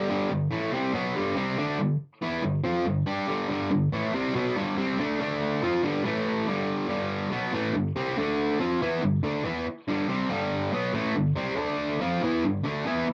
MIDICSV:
0, 0, Header, 1, 3, 480
1, 0, Start_track
1, 0, Key_signature, 1, "major"
1, 0, Tempo, 425230
1, 111, Time_signature, 4, 2, 24, 8
1, 14821, End_track
2, 0, Start_track
2, 0, Title_t, "Distorted electric guitar"
2, 0, Program_c, 0, 30
2, 99, Note_on_c, 0, 43, 78
2, 110, Note_on_c, 0, 50, 89
2, 116, Note_on_c, 0, 55, 99
2, 331, Note_off_c, 0, 43, 0
2, 333, Note_off_c, 0, 50, 0
2, 344, Note_on_c, 0, 43, 58
2, 346, Note_off_c, 0, 55, 0
2, 347, Note_on_c, 0, 50, 65
2, 539, Note_off_c, 0, 43, 0
2, 540, Note_off_c, 0, 50, 0
2, 580, Note_on_c, 0, 45, 82
2, 583, Note_on_c, 0, 52, 93
2, 594, Note_on_c, 0, 57, 93
2, 818, Note_off_c, 0, 45, 0
2, 819, Note_off_c, 0, 52, 0
2, 822, Note_on_c, 0, 48, 80
2, 825, Note_off_c, 0, 57, 0
2, 831, Note_on_c, 0, 55, 90
2, 841, Note_on_c, 0, 60, 101
2, 1052, Note_off_c, 0, 48, 0
2, 1056, Note_on_c, 0, 47, 78
2, 1062, Note_off_c, 0, 55, 0
2, 1067, Note_on_c, 0, 54, 90
2, 1068, Note_off_c, 0, 60, 0
2, 1075, Note_on_c, 0, 59, 95
2, 1296, Note_off_c, 0, 47, 0
2, 1297, Note_on_c, 0, 43, 80
2, 1301, Note_off_c, 0, 54, 0
2, 1305, Note_off_c, 0, 59, 0
2, 1307, Note_on_c, 0, 50, 93
2, 1311, Note_on_c, 0, 55, 90
2, 1530, Note_off_c, 0, 55, 0
2, 1534, Note_off_c, 0, 50, 0
2, 1536, Note_off_c, 0, 43, 0
2, 1538, Note_on_c, 0, 48, 78
2, 1544, Note_on_c, 0, 55, 82
2, 1547, Note_on_c, 0, 60, 84
2, 1777, Note_off_c, 0, 48, 0
2, 1780, Note_off_c, 0, 55, 0
2, 1781, Note_off_c, 0, 60, 0
2, 1790, Note_on_c, 0, 50, 77
2, 1792, Note_on_c, 0, 57, 81
2, 1802, Note_on_c, 0, 62, 97
2, 2013, Note_off_c, 0, 50, 0
2, 2016, Note_on_c, 0, 43, 60
2, 2024, Note_off_c, 0, 57, 0
2, 2027, Note_on_c, 0, 50, 64
2, 2029, Note_off_c, 0, 62, 0
2, 2215, Note_off_c, 0, 43, 0
2, 2220, Note_off_c, 0, 50, 0
2, 2505, Note_on_c, 0, 52, 82
2, 2512, Note_on_c, 0, 59, 91
2, 2520, Note_on_c, 0, 64, 94
2, 2737, Note_on_c, 0, 43, 64
2, 2740, Note_off_c, 0, 52, 0
2, 2744, Note_off_c, 0, 59, 0
2, 2746, Note_on_c, 0, 50, 70
2, 2748, Note_off_c, 0, 64, 0
2, 2935, Note_off_c, 0, 43, 0
2, 2940, Note_off_c, 0, 50, 0
2, 2975, Note_on_c, 0, 53, 87
2, 2982, Note_on_c, 0, 60, 84
2, 2994, Note_on_c, 0, 65, 89
2, 3215, Note_off_c, 0, 53, 0
2, 3217, Note_on_c, 0, 43, 63
2, 3218, Note_off_c, 0, 60, 0
2, 3225, Note_off_c, 0, 65, 0
2, 3226, Note_on_c, 0, 50, 67
2, 3415, Note_off_c, 0, 43, 0
2, 3420, Note_off_c, 0, 50, 0
2, 3456, Note_on_c, 0, 55, 79
2, 3459, Note_on_c, 0, 62, 80
2, 3470, Note_on_c, 0, 67, 89
2, 3695, Note_on_c, 0, 43, 80
2, 3696, Note_off_c, 0, 55, 0
2, 3697, Note_off_c, 0, 62, 0
2, 3702, Note_off_c, 0, 67, 0
2, 3704, Note_on_c, 0, 50, 95
2, 3713, Note_on_c, 0, 55, 83
2, 3932, Note_off_c, 0, 43, 0
2, 3939, Note_off_c, 0, 50, 0
2, 3944, Note_off_c, 0, 55, 0
2, 3945, Note_on_c, 0, 43, 84
2, 3957, Note_on_c, 0, 50, 84
2, 3960, Note_on_c, 0, 55, 90
2, 4173, Note_off_c, 0, 43, 0
2, 4177, Note_off_c, 0, 50, 0
2, 4186, Note_on_c, 0, 43, 67
2, 4188, Note_off_c, 0, 55, 0
2, 4191, Note_on_c, 0, 50, 73
2, 4380, Note_off_c, 0, 43, 0
2, 4382, Note_off_c, 0, 50, 0
2, 4429, Note_on_c, 0, 45, 93
2, 4436, Note_on_c, 0, 52, 89
2, 4446, Note_on_c, 0, 57, 97
2, 4662, Note_off_c, 0, 45, 0
2, 4665, Note_off_c, 0, 52, 0
2, 4670, Note_off_c, 0, 57, 0
2, 4670, Note_on_c, 0, 48, 92
2, 4681, Note_on_c, 0, 55, 97
2, 4687, Note_on_c, 0, 60, 93
2, 4897, Note_off_c, 0, 48, 0
2, 4901, Note_on_c, 0, 47, 91
2, 4908, Note_off_c, 0, 55, 0
2, 4911, Note_off_c, 0, 60, 0
2, 4913, Note_on_c, 0, 54, 88
2, 4923, Note_on_c, 0, 59, 84
2, 5138, Note_off_c, 0, 47, 0
2, 5144, Note_off_c, 0, 54, 0
2, 5148, Note_off_c, 0, 59, 0
2, 5148, Note_on_c, 0, 43, 87
2, 5158, Note_on_c, 0, 50, 91
2, 5166, Note_on_c, 0, 55, 94
2, 5381, Note_off_c, 0, 43, 0
2, 5383, Note_off_c, 0, 55, 0
2, 5384, Note_off_c, 0, 50, 0
2, 5389, Note_on_c, 0, 48, 86
2, 5397, Note_on_c, 0, 55, 89
2, 5402, Note_on_c, 0, 60, 97
2, 5621, Note_off_c, 0, 48, 0
2, 5625, Note_off_c, 0, 55, 0
2, 5628, Note_off_c, 0, 60, 0
2, 5636, Note_on_c, 0, 50, 77
2, 5646, Note_on_c, 0, 57, 91
2, 5653, Note_on_c, 0, 62, 88
2, 5855, Note_off_c, 0, 50, 0
2, 5869, Note_on_c, 0, 50, 86
2, 5870, Note_off_c, 0, 57, 0
2, 5870, Note_off_c, 0, 62, 0
2, 5883, Note_on_c, 0, 57, 92
2, 5883, Note_on_c, 0, 62, 98
2, 6341, Note_off_c, 0, 50, 0
2, 6348, Note_off_c, 0, 57, 0
2, 6348, Note_off_c, 0, 62, 0
2, 6351, Note_on_c, 0, 53, 88
2, 6363, Note_on_c, 0, 60, 84
2, 6371, Note_on_c, 0, 65, 92
2, 6582, Note_off_c, 0, 53, 0
2, 6586, Note_on_c, 0, 43, 78
2, 6588, Note_off_c, 0, 60, 0
2, 6590, Note_on_c, 0, 50, 101
2, 6592, Note_off_c, 0, 65, 0
2, 6600, Note_on_c, 0, 55, 101
2, 6819, Note_off_c, 0, 50, 0
2, 6820, Note_off_c, 0, 43, 0
2, 6824, Note_on_c, 0, 45, 90
2, 6827, Note_off_c, 0, 55, 0
2, 6832, Note_on_c, 0, 52, 90
2, 6840, Note_on_c, 0, 57, 95
2, 7299, Note_off_c, 0, 45, 0
2, 7303, Note_off_c, 0, 52, 0
2, 7307, Note_off_c, 0, 57, 0
2, 7312, Note_on_c, 0, 43, 81
2, 7317, Note_on_c, 0, 50, 92
2, 7323, Note_on_c, 0, 55, 90
2, 7758, Note_off_c, 0, 43, 0
2, 7772, Note_off_c, 0, 50, 0
2, 7772, Note_on_c, 0, 43, 80
2, 7777, Note_off_c, 0, 55, 0
2, 7786, Note_on_c, 0, 50, 80
2, 7790, Note_on_c, 0, 55, 96
2, 8247, Note_off_c, 0, 50, 0
2, 8251, Note_on_c, 0, 47, 83
2, 8254, Note_off_c, 0, 43, 0
2, 8262, Note_off_c, 0, 55, 0
2, 8266, Note_on_c, 0, 54, 81
2, 8273, Note_on_c, 0, 59, 92
2, 8494, Note_off_c, 0, 47, 0
2, 8501, Note_off_c, 0, 54, 0
2, 8501, Note_on_c, 0, 45, 81
2, 8505, Note_off_c, 0, 59, 0
2, 8513, Note_on_c, 0, 52, 87
2, 8520, Note_on_c, 0, 57, 97
2, 8739, Note_off_c, 0, 45, 0
2, 8742, Note_on_c, 0, 43, 48
2, 8744, Note_off_c, 0, 52, 0
2, 8746, Note_on_c, 0, 50, 59
2, 8748, Note_off_c, 0, 57, 0
2, 8939, Note_off_c, 0, 43, 0
2, 8940, Note_off_c, 0, 50, 0
2, 8986, Note_on_c, 0, 48, 77
2, 8988, Note_on_c, 0, 55, 83
2, 8996, Note_on_c, 0, 60, 98
2, 9222, Note_off_c, 0, 48, 0
2, 9223, Note_off_c, 0, 55, 0
2, 9226, Note_on_c, 0, 50, 69
2, 9227, Note_off_c, 0, 60, 0
2, 9231, Note_on_c, 0, 57, 81
2, 9238, Note_on_c, 0, 62, 74
2, 9696, Note_off_c, 0, 50, 0
2, 9700, Note_on_c, 0, 53, 69
2, 9703, Note_off_c, 0, 57, 0
2, 9708, Note_off_c, 0, 62, 0
2, 9708, Note_on_c, 0, 60, 72
2, 9713, Note_on_c, 0, 65, 94
2, 9940, Note_off_c, 0, 53, 0
2, 9943, Note_off_c, 0, 60, 0
2, 9946, Note_off_c, 0, 65, 0
2, 9950, Note_on_c, 0, 52, 85
2, 9959, Note_on_c, 0, 59, 87
2, 9959, Note_on_c, 0, 64, 88
2, 10183, Note_off_c, 0, 52, 0
2, 10188, Note_on_c, 0, 50, 61
2, 10189, Note_off_c, 0, 59, 0
2, 10189, Note_off_c, 0, 64, 0
2, 10190, Note_on_c, 0, 43, 56
2, 10383, Note_off_c, 0, 50, 0
2, 10384, Note_off_c, 0, 43, 0
2, 10419, Note_on_c, 0, 50, 80
2, 10430, Note_on_c, 0, 57, 82
2, 10434, Note_on_c, 0, 62, 94
2, 10654, Note_off_c, 0, 50, 0
2, 10658, Note_on_c, 0, 52, 78
2, 10665, Note_off_c, 0, 57, 0
2, 10667, Note_off_c, 0, 62, 0
2, 10670, Note_on_c, 0, 59, 85
2, 10672, Note_on_c, 0, 64, 84
2, 10899, Note_off_c, 0, 52, 0
2, 10905, Note_off_c, 0, 59, 0
2, 10906, Note_off_c, 0, 64, 0
2, 11153, Note_on_c, 0, 43, 81
2, 11157, Note_on_c, 0, 50, 75
2, 11166, Note_on_c, 0, 55, 83
2, 11378, Note_off_c, 0, 50, 0
2, 11378, Note_off_c, 0, 55, 0
2, 11383, Note_on_c, 0, 48, 81
2, 11387, Note_off_c, 0, 43, 0
2, 11392, Note_on_c, 0, 55, 83
2, 11396, Note_on_c, 0, 60, 80
2, 11622, Note_off_c, 0, 48, 0
2, 11624, Note_off_c, 0, 55, 0
2, 11624, Note_on_c, 0, 43, 85
2, 11629, Note_off_c, 0, 60, 0
2, 11630, Note_on_c, 0, 50, 76
2, 11638, Note_on_c, 0, 55, 93
2, 12095, Note_off_c, 0, 50, 0
2, 12100, Note_on_c, 0, 47, 79
2, 12103, Note_off_c, 0, 43, 0
2, 12110, Note_off_c, 0, 55, 0
2, 12114, Note_on_c, 0, 54, 82
2, 12120, Note_on_c, 0, 59, 90
2, 12334, Note_off_c, 0, 47, 0
2, 12338, Note_on_c, 0, 45, 82
2, 12346, Note_off_c, 0, 54, 0
2, 12350, Note_off_c, 0, 59, 0
2, 12350, Note_on_c, 0, 52, 90
2, 12354, Note_on_c, 0, 57, 93
2, 12580, Note_off_c, 0, 45, 0
2, 12586, Note_off_c, 0, 52, 0
2, 12588, Note_off_c, 0, 57, 0
2, 12591, Note_on_c, 0, 43, 46
2, 12595, Note_on_c, 0, 50, 61
2, 12786, Note_off_c, 0, 43, 0
2, 12788, Note_off_c, 0, 50, 0
2, 12820, Note_on_c, 0, 48, 86
2, 12833, Note_on_c, 0, 55, 87
2, 12840, Note_on_c, 0, 60, 95
2, 13058, Note_off_c, 0, 48, 0
2, 13058, Note_on_c, 0, 50, 73
2, 13070, Note_off_c, 0, 55, 0
2, 13070, Note_on_c, 0, 57, 77
2, 13076, Note_off_c, 0, 60, 0
2, 13076, Note_on_c, 0, 62, 89
2, 13540, Note_off_c, 0, 50, 0
2, 13546, Note_off_c, 0, 57, 0
2, 13549, Note_off_c, 0, 62, 0
2, 13551, Note_on_c, 0, 53, 81
2, 13560, Note_on_c, 0, 60, 76
2, 13560, Note_on_c, 0, 65, 79
2, 13786, Note_off_c, 0, 53, 0
2, 13791, Note_off_c, 0, 60, 0
2, 13791, Note_off_c, 0, 65, 0
2, 13801, Note_on_c, 0, 52, 77
2, 13808, Note_on_c, 0, 59, 93
2, 13817, Note_on_c, 0, 64, 81
2, 14031, Note_off_c, 0, 52, 0
2, 14034, Note_off_c, 0, 59, 0
2, 14039, Note_off_c, 0, 64, 0
2, 14040, Note_on_c, 0, 43, 56
2, 14044, Note_on_c, 0, 50, 65
2, 14230, Note_off_c, 0, 43, 0
2, 14232, Note_off_c, 0, 50, 0
2, 14263, Note_on_c, 0, 50, 83
2, 14272, Note_on_c, 0, 57, 89
2, 14280, Note_on_c, 0, 62, 91
2, 14502, Note_off_c, 0, 50, 0
2, 14506, Note_off_c, 0, 57, 0
2, 14510, Note_off_c, 0, 62, 0
2, 14512, Note_on_c, 0, 52, 70
2, 14518, Note_on_c, 0, 59, 80
2, 14525, Note_on_c, 0, 64, 91
2, 14746, Note_off_c, 0, 52, 0
2, 14749, Note_off_c, 0, 59, 0
2, 14753, Note_off_c, 0, 64, 0
2, 14821, End_track
3, 0, Start_track
3, 0, Title_t, "Muted distorted electric guitar strokes"
3, 10912, Note_on_c, 9, 29, 54
3, 11025, Note_off_c, 9, 29, 0
3, 14742, Note_on_c, 9, 29, 49
3, 14821, Note_off_c, 9, 29, 0
3, 14821, End_track
0, 0, End_of_file